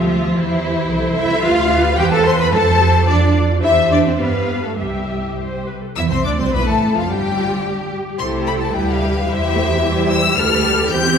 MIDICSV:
0, 0, Header, 1, 6, 480
1, 0, Start_track
1, 0, Key_signature, 0, "major"
1, 0, Tempo, 547445
1, 309, Time_signature, 2, 2, 24, 8
1, 3186, Tempo, 580833
1, 5586, Tempo, 546946
1, 9661, End_track
2, 0, Start_track
2, 0, Title_t, "Violin section"
2, 0, Program_c, 0, 48
2, 0, Note_on_c, 0, 65, 70
2, 318, Note_off_c, 0, 65, 0
2, 322, Note_on_c, 0, 64, 95
2, 1019, Note_off_c, 0, 64, 0
2, 1040, Note_on_c, 0, 76, 110
2, 1272, Note_off_c, 0, 76, 0
2, 1274, Note_on_c, 0, 77, 111
2, 1748, Note_off_c, 0, 77, 0
2, 1758, Note_on_c, 0, 79, 102
2, 1803, Note_off_c, 0, 79, 0
2, 1870, Note_on_c, 0, 81, 92
2, 1917, Note_off_c, 0, 81, 0
2, 2000, Note_on_c, 0, 84, 101
2, 2045, Note_off_c, 0, 84, 0
2, 2112, Note_on_c, 0, 83, 90
2, 2227, Note_off_c, 0, 83, 0
2, 2228, Note_on_c, 0, 81, 107
2, 2696, Note_off_c, 0, 81, 0
2, 2718, Note_on_c, 0, 74, 86
2, 2951, Note_off_c, 0, 74, 0
2, 3186, Note_on_c, 0, 76, 106
2, 3400, Note_off_c, 0, 76, 0
2, 3421, Note_on_c, 0, 74, 78
2, 3533, Note_off_c, 0, 74, 0
2, 3533, Note_on_c, 0, 72, 68
2, 3581, Note_off_c, 0, 72, 0
2, 3658, Note_on_c, 0, 71, 73
2, 4012, Note_off_c, 0, 71, 0
2, 4019, Note_on_c, 0, 69, 67
2, 4067, Note_off_c, 0, 69, 0
2, 4151, Note_on_c, 0, 67, 69
2, 4867, Note_off_c, 0, 67, 0
2, 5112, Note_on_c, 0, 88, 96
2, 5160, Note_off_c, 0, 88, 0
2, 5232, Note_on_c, 0, 84, 83
2, 5342, Note_on_c, 0, 86, 95
2, 5349, Note_off_c, 0, 84, 0
2, 5391, Note_off_c, 0, 86, 0
2, 5467, Note_on_c, 0, 84, 78
2, 5582, Note_off_c, 0, 84, 0
2, 5588, Note_on_c, 0, 83, 103
2, 5707, Note_off_c, 0, 83, 0
2, 5714, Note_on_c, 0, 81, 87
2, 5949, Note_off_c, 0, 81, 0
2, 5967, Note_on_c, 0, 77, 83
2, 6077, Note_off_c, 0, 77, 0
2, 6083, Note_on_c, 0, 79, 101
2, 6802, Note_off_c, 0, 79, 0
2, 7037, Note_on_c, 0, 84, 105
2, 7107, Note_off_c, 0, 84, 0
2, 7275, Note_on_c, 0, 83, 98
2, 7322, Note_off_c, 0, 83, 0
2, 7406, Note_on_c, 0, 81, 82
2, 7511, Note_on_c, 0, 79, 94
2, 7516, Note_off_c, 0, 81, 0
2, 7631, Note_on_c, 0, 77, 94
2, 7632, Note_off_c, 0, 79, 0
2, 7986, Note_on_c, 0, 76, 116
2, 7990, Note_off_c, 0, 77, 0
2, 8703, Note_on_c, 0, 88, 127
2, 8704, Note_off_c, 0, 76, 0
2, 8938, Note_on_c, 0, 89, 127
2, 8941, Note_off_c, 0, 88, 0
2, 9424, Note_off_c, 0, 89, 0
2, 9427, Note_on_c, 0, 91, 124
2, 9661, Note_off_c, 0, 91, 0
2, 9661, End_track
3, 0, Start_track
3, 0, Title_t, "Violin section"
3, 0, Program_c, 1, 48
3, 0, Note_on_c, 1, 65, 81
3, 302, Note_off_c, 1, 65, 0
3, 304, Note_on_c, 1, 64, 88
3, 1019, Note_on_c, 1, 76, 93
3, 1024, Note_off_c, 1, 64, 0
3, 1247, Note_on_c, 1, 77, 102
3, 1261, Note_off_c, 1, 76, 0
3, 1730, Note_on_c, 1, 79, 93
3, 1735, Note_off_c, 1, 77, 0
3, 1847, Note_on_c, 1, 81, 97
3, 1858, Note_off_c, 1, 79, 0
3, 1974, Note_on_c, 1, 84, 100
3, 1977, Note_off_c, 1, 81, 0
3, 2100, Note_off_c, 1, 84, 0
3, 2110, Note_on_c, 1, 83, 98
3, 2157, Note_off_c, 1, 83, 0
3, 2224, Note_on_c, 1, 81, 103
3, 2694, Note_off_c, 1, 81, 0
3, 2701, Note_on_c, 1, 74, 87
3, 2938, Note_off_c, 1, 74, 0
3, 3188, Note_on_c, 1, 76, 92
3, 3401, Note_off_c, 1, 76, 0
3, 3419, Note_on_c, 1, 74, 82
3, 3465, Note_off_c, 1, 74, 0
3, 3542, Note_on_c, 1, 72, 75
3, 3654, Note_off_c, 1, 72, 0
3, 3654, Note_on_c, 1, 71, 78
3, 4010, Note_on_c, 1, 69, 64
3, 4017, Note_off_c, 1, 71, 0
3, 4136, Note_off_c, 1, 69, 0
3, 4137, Note_on_c, 1, 67, 56
3, 4860, Note_off_c, 1, 67, 0
3, 5122, Note_on_c, 1, 76, 87
3, 5168, Note_off_c, 1, 76, 0
3, 5235, Note_on_c, 1, 72, 85
3, 5282, Note_off_c, 1, 72, 0
3, 5355, Note_on_c, 1, 74, 76
3, 5468, Note_off_c, 1, 74, 0
3, 5472, Note_on_c, 1, 72, 78
3, 5580, Note_on_c, 1, 71, 92
3, 5585, Note_off_c, 1, 72, 0
3, 5703, Note_off_c, 1, 71, 0
3, 5703, Note_on_c, 1, 69, 84
3, 5947, Note_off_c, 1, 69, 0
3, 5950, Note_on_c, 1, 65, 79
3, 6071, Note_off_c, 1, 65, 0
3, 6073, Note_on_c, 1, 67, 87
3, 6782, Note_off_c, 1, 67, 0
3, 7041, Note_on_c, 1, 72, 71
3, 7045, Note_on_c, 1, 67, 69
3, 7482, Note_off_c, 1, 72, 0
3, 7484, Note_off_c, 1, 67, 0
3, 7510, Note_on_c, 1, 64, 71
3, 7516, Note_on_c, 1, 71, 67
3, 7980, Note_off_c, 1, 64, 0
3, 7993, Note_off_c, 1, 71, 0
3, 7997, Note_on_c, 1, 64, 81
3, 7997, Note_on_c, 1, 72, 79
3, 8456, Note_off_c, 1, 72, 0
3, 8460, Note_off_c, 1, 64, 0
3, 8466, Note_on_c, 1, 72, 77
3, 8468, Note_on_c, 1, 67, 70
3, 8938, Note_off_c, 1, 72, 0
3, 8941, Note_off_c, 1, 67, 0
3, 8951, Note_on_c, 1, 71, 84
3, 8952, Note_on_c, 1, 67, 85
3, 9397, Note_off_c, 1, 71, 0
3, 9436, Note_on_c, 1, 72, 92
3, 9661, Note_off_c, 1, 67, 0
3, 9661, Note_off_c, 1, 72, 0
3, 9661, End_track
4, 0, Start_track
4, 0, Title_t, "Viola section"
4, 0, Program_c, 2, 48
4, 0, Note_on_c, 2, 67, 67
4, 0, Note_on_c, 2, 76, 67
4, 292, Note_off_c, 2, 76, 0
4, 305, Note_off_c, 2, 67, 0
4, 314, Note_on_c, 2, 72, 77
4, 315, Note_on_c, 2, 67, 65
4, 781, Note_off_c, 2, 67, 0
4, 781, Note_off_c, 2, 72, 0
4, 792, Note_on_c, 2, 69, 77
4, 792, Note_on_c, 2, 72, 85
4, 1258, Note_off_c, 2, 72, 0
4, 1267, Note_off_c, 2, 69, 0
4, 1267, Note_on_c, 2, 71, 83
4, 1272, Note_on_c, 2, 67, 85
4, 1337, Note_off_c, 2, 71, 0
4, 1500, Note_on_c, 2, 71, 85
4, 1737, Note_off_c, 2, 71, 0
4, 1747, Note_off_c, 2, 67, 0
4, 1748, Note_on_c, 2, 72, 74
4, 1750, Note_on_c, 2, 71, 86
4, 2214, Note_off_c, 2, 72, 0
4, 2219, Note_off_c, 2, 71, 0
4, 2223, Note_on_c, 2, 69, 84
4, 2225, Note_on_c, 2, 72, 82
4, 2464, Note_off_c, 2, 69, 0
4, 2466, Note_on_c, 2, 67, 83
4, 2694, Note_off_c, 2, 72, 0
4, 2705, Note_off_c, 2, 67, 0
4, 2705, Note_on_c, 2, 65, 77
4, 2706, Note_on_c, 2, 74, 77
4, 3185, Note_off_c, 2, 65, 0
4, 3186, Note_off_c, 2, 74, 0
4, 3186, Note_on_c, 2, 72, 72
4, 3187, Note_on_c, 2, 67, 76
4, 3620, Note_off_c, 2, 67, 0
4, 3620, Note_off_c, 2, 72, 0
4, 3656, Note_on_c, 2, 67, 62
4, 3656, Note_on_c, 2, 77, 64
4, 4132, Note_off_c, 2, 67, 0
4, 4141, Note_off_c, 2, 77, 0
4, 4141, Note_on_c, 2, 67, 50
4, 4141, Note_on_c, 2, 76, 54
4, 4573, Note_off_c, 2, 67, 0
4, 4573, Note_off_c, 2, 76, 0
4, 4635, Note_on_c, 2, 72, 62
4, 4861, Note_off_c, 2, 72, 0
4, 4875, Note_on_c, 2, 71, 55
4, 4995, Note_on_c, 2, 69, 48
4, 4997, Note_off_c, 2, 71, 0
4, 5044, Note_off_c, 2, 69, 0
4, 5116, Note_on_c, 2, 64, 102
4, 5164, Note_off_c, 2, 64, 0
4, 5230, Note_on_c, 2, 60, 82
4, 5348, Note_off_c, 2, 60, 0
4, 5354, Note_on_c, 2, 62, 84
4, 5401, Note_off_c, 2, 62, 0
4, 5472, Note_on_c, 2, 60, 86
4, 5584, Note_off_c, 2, 60, 0
4, 5589, Note_on_c, 2, 59, 93
4, 5710, Note_off_c, 2, 59, 0
4, 5710, Note_on_c, 2, 57, 81
4, 5946, Note_off_c, 2, 57, 0
4, 5955, Note_on_c, 2, 53, 74
4, 6073, Note_off_c, 2, 53, 0
4, 6077, Note_on_c, 2, 55, 89
4, 6799, Note_off_c, 2, 55, 0
4, 7045, Note_on_c, 2, 57, 76
4, 7045, Note_on_c, 2, 64, 66
4, 7483, Note_off_c, 2, 57, 0
4, 7484, Note_off_c, 2, 64, 0
4, 7516, Note_on_c, 2, 67, 74
4, 7517, Note_on_c, 2, 55, 69
4, 7979, Note_off_c, 2, 55, 0
4, 7981, Note_off_c, 2, 67, 0
4, 7989, Note_on_c, 2, 55, 76
4, 7992, Note_on_c, 2, 67, 71
4, 8060, Note_off_c, 2, 55, 0
4, 8227, Note_on_c, 2, 57, 89
4, 8298, Note_off_c, 2, 57, 0
4, 8457, Note_off_c, 2, 67, 0
4, 8463, Note_on_c, 2, 64, 86
4, 8464, Note_on_c, 2, 55, 86
4, 8932, Note_off_c, 2, 55, 0
4, 8943, Note_on_c, 2, 55, 80
4, 8944, Note_on_c, 2, 67, 86
4, 8946, Note_off_c, 2, 64, 0
4, 9393, Note_off_c, 2, 55, 0
4, 9393, Note_off_c, 2, 67, 0
4, 9427, Note_on_c, 2, 60, 97
4, 9428, Note_on_c, 2, 64, 91
4, 9661, Note_off_c, 2, 60, 0
4, 9661, Note_off_c, 2, 64, 0
4, 9661, End_track
5, 0, Start_track
5, 0, Title_t, "Cello section"
5, 0, Program_c, 3, 48
5, 0, Note_on_c, 3, 53, 104
5, 308, Note_off_c, 3, 53, 0
5, 309, Note_on_c, 3, 52, 93
5, 1022, Note_on_c, 3, 64, 126
5, 1026, Note_off_c, 3, 52, 0
5, 1258, Note_off_c, 3, 64, 0
5, 1259, Note_on_c, 3, 65, 111
5, 1731, Note_off_c, 3, 65, 0
5, 1739, Note_on_c, 3, 67, 113
5, 1788, Note_off_c, 3, 67, 0
5, 1864, Note_on_c, 3, 69, 123
5, 1980, Note_on_c, 3, 72, 110
5, 1983, Note_off_c, 3, 69, 0
5, 2104, Note_off_c, 3, 72, 0
5, 2104, Note_on_c, 3, 71, 117
5, 2153, Note_off_c, 3, 71, 0
5, 2219, Note_on_c, 3, 69, 110
5, 2691, Note_off_c, 3, 69, 0
5, 2703, Note_on_c, 3, 62, 97
5, 2939, Note_off_c, 3, 62, 0
5, 3182, Note_on_c, 3, 64, 96
5, 3248, Note_off_c, 3, 64, 0
5, 3410, Note_on_c, 3, 62, 89
5, 3528, Note_off_c, 3, 62, 0
5, 3532, Note_on_c, 3, 60, 93
5, 3579, Note_off_c, 3, 60, 0
5, 3649, Note_on_c, 3, 59, 88
5, 4007, Note_off_c, 3, 59, 0
5, 4019, Note_on_c, 3, 57, 67
5, 4138, Note_off_c, 3, 57, 0
5, 4138, Note_on_c, 3, 55, 67
5, 4860, Note_off_c, 3, 55, 0
5, 5587, Note_on_c, 3, 64, 74
5, 6037, Note_off_c, 3, 64, 0
5, 6069, Note_on_c, 3, 62, 68
5, 6309, Note_on_c, 3, 65, 77
5, 6311, Note_off_c, 3, 62, 0
5, 6552, Note_on_c, 3, 67, 71
5, 6553, Note_off_c, 3, 65, 0
5, 7022, Note_off_c, 3, 67, 0
5, 7034, Note_on_c, 3, 69, 75
5, 7511, Note_off_c, 3, 69, 0
5, 7513, Note_on_c, 3, 67, 86
5, 7982, Note_off_c, 3, 67, 0
5, 7993, Note_on_c, 3, 67, 95
5, 8929, Note_off_c, 3, 67, 0
5, 8943, Note_on_c, 3, 69, 99
5, 9426, Note_off_c, 3, 69, 0
5, 9428, Note_on_c, 3, 67, 101
5, 9661, Note_off_c, 3, 67, 0
5, 9661, End_track
6, 0, Start_track
6, 0, Title_t, "Double bass section"
6, 0, Program_c, 4, 48
6, 0, Note_on_c, 4, 38, 77
6, 298, Note_off_c, 4, 38, 0
6, 308, Note_on_c, 4, 40, 91
6, 778, Note_off_c, 4, 40, 0
6, 784, Note_on_c, 4, 36, 81
6, 1254, Note_off_c, 4, 36, 0
6, 1267, Note_on_c, 4, 38, 106
6, 1735, Note_off_c, 4, 38, 0
6, 1742, Note_on_c, 4, 40, 96
6, 2225, Note_off_c, 4, 40, 0
6, 2225, Note_on_c, 4, 41, 98
6, 2688, Note_off_c, 4, 41, 0
6, 2698, Note_on_c, 4, 41, 76
6, 3172, Note_off_c, 4, 41, 0
6, 3182, Note_on_c, 4, 40, 82
6, 3618, Note_off_c, 4, 40, 0
6, 3651, Note_on_c, 4, 43, 67
6, 4137, Note_on_c, 4, 36, 61
6, 4139, Note_off_c, 4, 43, 0
6, 4945, Note_off_c, 4, 36, 0
6, 5117, Note_on_c, 4, 40, 96
6, 5226, Note_off_c, 4, 40, 0
6, 5230, Note_on_c, 4, 36, 69
6, 5278, Note_off_c, 4, 36, 0
6, 5354, Note_on_c, 4, 38, 90
6, 5468, Note_off_c, 4, 38, 0
6, 5470, Note_on_c, 4, 36, 90
6, 5586, Note_off_c, 4, 36, 0
6, 5586, Note_on_c, 4, 35, 86
6, 5635, Note_off_c, 4, 35, 0
6, 5708, Note_on_c, 4, 33, 78
6, 5778, Note_off_c, 4, 33, 0
6, 5953, Note_on_c, 4, 29, 70
6, 6070, Note_off_c, 4, 29, 0
6, 6073, Note_on_c, 4, 31, 76
6, 6797, Note_off_c, 4, 31, 0
6, 7038, Note_on_c, 4, 36, 84
6, 7480, Note_off_c, 4, 36, 0
6, 7517, Note_on_c, 4, 38, 75
6, 7993, Note_off_c, 4, 38, 0
6, 7994, Note_on_c, 4, 40, 97
6, 8930, Note_off_c, 4, 40, 0
6, 8949, Note_on_c, 4, 38, 94
6, 9396, Note_off_c, 4, 38, 0
6, 9431, Note_on_c, 4, 40, 88
6, 9661, Note_off_c, 4, 40, 0
6, 9661, End_track
0, 0, End_of_file